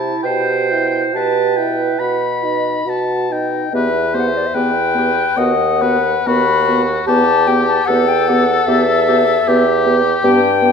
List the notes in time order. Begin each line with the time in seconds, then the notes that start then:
Already playing: C3 E4 E5 A5
0.23 B2 C5 G5
0.27 G4
0.72 E4 E5
1.14 B2 G4 B4 G5 A5
1.57 E4 E5 G5
1.99 B2 F#4 F#5 B5
2.44 D#4 D#5
2.86 B2 F#4 F#5 A5
3.31 D#4 D#5 G5
3.72 E2 B3 G4 B4 E5
4.14 B3 G4 C5
4.20 F#5
4.28 E5
4.37 D5
4.47 E5
4.54 E2 B3 G4 B4 G5
4.95 B3 G4
5.37 D#2 B3 F#4 D#5 F#5
5.81 B3 F#4 B4
6.27 D#2 B3 F#4 B5
6.68 B3 F#4
7.06 E2 B3 G4 A5
7.48 B3 G4 G5
7.67 A5
7.85 E2 G4 A4 F#5
7.90 B3
8.08 G5
8.28 B3 G4 F#5
8.67 E2 B3 G4 E5
9.08 B3 G4
9.47 E2 B3 G4
9.86 B3 G4
10.23 G2 B3 G4 G5
10.62 B3 G4